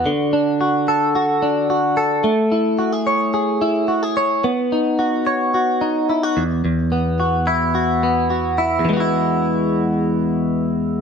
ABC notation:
X:1
M:4/4
L:1/16
Q:1/4=109
K:E
V:1 name="Clean electric guitar"
=D,2 =D2 F2 A2 F2 D2 F2 A2 | A,2 E2 F G c2 G2 E2 F G c2 | B,2 D2 F2 c2 F2 D2 E F E,,2 | E,,2 B,2 F2 E2 F2 B,2 F2 E2 |
[E,,E,G,B,EF]16 |]